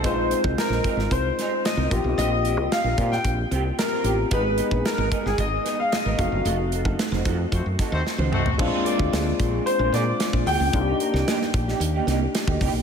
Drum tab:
CC |----------------|----------------|----------------|----------------|
HH |x-x-x-x-x-x-x-x-|x-x-x-x-x-x-x-x-|x-x-x-x-x-x-x-x-|x-x-x-x-x-x-----|
SD |----oo-o--o-o---|----o--o----o---|----o--o--o-o---|----oo----o-o---|
T1 |----------------|----------------|----------------|-------------o--|
T2 |----------------|----------------|----------------|--------------o-|
FT |----------------|----------------|----------------|---------------o|
BD |o--o--o-o-----o-|------o-o-------|o--o--o-o-----o-|---o--o-o-o-----|

CC |x---------------|----------------|
HH |--x-x-x-x-x-x-o-|x-x-x-x-x-x-x-o-|
SD |----o-----o-o---|---ooo-o--o-o---|
T1 |----------------|----------------|
T2 |----------------|----------------|
FT |----------------|----------------|
BD |o--o--o------o--|o-----o------oo-|